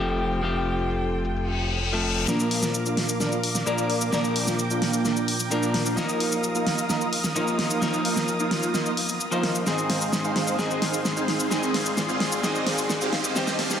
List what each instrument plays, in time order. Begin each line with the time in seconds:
Already playing: detuned saw bass F1, clean electric guitar F3 A3 C4 G4, string section F4 A4 G5
0.09 shaker
0.32 shaker
0.42 clean electric guitar F3 A3 C4 G4, shaker
0.55 shaker
0.78 shaker
0.90 shaker
1.01 shaker
1.24 shaker
1.36 reverse cymbal, shaker
1.48 shaker
1.71 shaker
1.82 shaker
1.93 clean electric guitar F3 A3 C4 A4
2.17 shaker
2.27 detuned saw bass A#1, clean electric guitar A#2 F3 A#3 D4 A#4, supersaw synth A#3 D4 F4 A#4 D5, string section A#4 F5 D6, snare, riser, shaker
2.40 shaker
2.51 detuned saw bass A#1, supersaw synth A#3 D4 F4 A#4 F5, open hi-hat
2.63 snare, shaker
2.74 shaker
2.86 detuned saw bass A#1, supersaw synth A#3 D4 F4 A#4 F5, shaker
2.97 snare, open hi-hat
3.09 shaker
3.20 detuned saw bass A#1, supersaw synth A#3 D4 F4 A#4 D5, snare, shaker
3.32 shaker
3.43 open hi-hat
3.55 snare, shaker
3.66 detuned saw bass A#1, clean electric guitar A#2 F3 A#3 D4 A#4, supersaw synth A#3 D4 F4 A#4 D5, shaker
3.78 shaker
3.90 open hi-hat
4.01 detuned saw bass A#1, supersaw synth A#3 D4 F4 A#4 F5, shaker
4.12 detuned saw bass A#1, clean electric guitar A#2 F3 A#3 D4 A#4, supersaw synth A#3 D4 F4 A#4 D5, string section G5, snare, shaker
4.24 shaker
4.36 detuned saw bass A#1, supersaw synth A#3 D4 F4 A#4 F5, open hi-hat
4.47 snare, shaker
4.59 shaker
4.70 detuned saw bass A#1, supersaw synth A#3 D4 F4 A#4 F5, shaker
4.82 snare, open hi-hat
4.94 shaker
5.05 detuned saw bass A#1, supersaw synth A#3 D4 F4 A#4 D5, snare, shaker
5.17 shaker
5.28 open hi-hat
5.40 shaker
5.50 detuned saw bass A#1, clean electric guitar A#2 F3 A#3 D4 A#4, supersaw synth A#3 D4 F4 A#4 D5, shaker
5.63 shaker
5.74 snare, open hi-hat
5.86 detuned saw bass A#1, supersaw synth A#3 D4 F4 A#4 F5, shaker
5.96 detuned saw bass D#2, clean electric guitar F3 A#3 D#4 A#4, supersaw synth A#3 D#4 F4 A#4 D#5, string section F5 D#6, snare, shaker
6.09 shaker
6.20 detuned saw bass D#2, supersaw synth A#3 D#4 F4 A#4 F5, open hi-hat
6.32 shaker
6.44 shaker
6.55 detuned saw bass D#2, supersaw synth A#3 D#4 F4 A#4 F5, shaker
6.67 snare, open hi-hat
6.78 shaker
6.89 detuned saw bass D#2, supersaw synth A#3 D#4 F4 A#4 D#5, snare, shaker
7.01 shaker
7.13 open hi-hat
7.24 snare, shaker
7.35 detuned saw bass D#2, clean electric guitar F3 A#3 D#4 A#4, supersaw synth A#3 D#4 F4 A#4 D#5, shaker
7.47 shaker
7.59 snare, open hi-hat
7.70 detuned saw bass D#2, supersaw synth A#3 D#4 F4 A#4 F5, shaker
7.81 detuned saw bass D#2, clean electric guitar F3 A#3 D#4 A#4, supersaw synth A#3 D#4 F4 A#4 D#5, snare, shaker
7.94 shaker
8.05 detuned saw bass D#2, supersaw synth A#3 D#4 F4 A#4 F5, open hi-hat
8.16 snare, shaker
8.28 shaker
8.40 detuned saw bass D#2, supersaw synth A#3 D#4 F4 A#4 F5, shaker
8.51 snare, open hi-hat
8.63 shaker
8.74 detuned saw bass D#2, supersaw synth A#3 D#4 F4 A#4 D#5, snare, shaker
8.86 shaker
8.97 open hi-hat
9.09 shaker
9.21 shaker
9.31 detuned saw bass D#2, clean electric guitar F3 A#3 D#4 C5, supersaw synth A#3 D#4 F4 A#4 F5, shaker
9.43 snare, open hi-hat
9.55 shaker
9.65 detuned saw bass G#1, clean electric guitar G#2 D#3 G#3 C4 G#4, supersaw synth C4 D#4 G#4 C5 D#5, string section G#4 D#5 C6, snare, shaker
9.78 shaker
9.89 detuned saw bass G#1, supersaw synth C4 D#4 G#4 C5 F5, snare, open hi-hat
10.01 shaker
10.13 snare, shaker
10.24 detuned saw bass G#1, supersaw synth C4 D#4 G#4 C5 F5, shaker
10.36 snare, open hi-hat
10.48 shaker
10.58 detuned saw bass G#1, clean electric guitar G#2 D#3 G#3 C4 G#4, supersaw synth C4 D#4 G#4 C5 D#5, snare, shaker
10.71 shaker
10.82 detuned saw bass G#1, supersaw synth C4 D#4 G#4 C5 F5, snare, open hi-hat
10.94 shaker
11.05 snare, shaker
11.16 detuned saw bass G#1, supersaw synth C4 D#4 G#4 C5 F5, shaker
11.28 snare, open hi-hat
11.40 shaker
11.50 detuned saw bass G#1, clean electric guitar G#2 D#3 G#3 C4 G#4, supersaw synth C4 D#4 G#4 C5 D#5, string section D5, snare, shaker
11.63 shaker
11.74 detuned saw bass G#1, supersaw synth C4 D#4 G#4 C5 F5, snare, open hi-hat
11.86 shaker
11.97 snare, shaker
12.09 detuned saw bass G#1, supersaw synth C4 D#4 G#4 C5 F5, shaker
12.20 snare, open hi-hat
12.32 shaker
12.42 clean electric guitar G#2 D#3 G#3 C4 G#4, supersaw synth C4 D#4 G#4 C5 D#5, snare, shaker
12.55 shaker
12.66 detuned saw bass G#1, supersaw synth C4 D#4 G#4 C5 F5, snare, open hi-hat
12.78 shaker
12.90 snare, shaker
13.01 detuned saw bass G#1, supersaw synth C4 D#4 G#4 C5 F5, shaker
13.13 snare, open hi-hat
13.24 shaker
13.35 clean electric guitar G2 D#3 G3 C4 G4, supersaw synth C4 D#4 G4 C5 D#5, string section G4 F5 A5, snare, shaker
13.47 snare, shaker
13.59 detuned saw bass F1, supersaw synth C4 D#4 G4 C5 F5, snare, open hi-hat
13.70 snare, shaker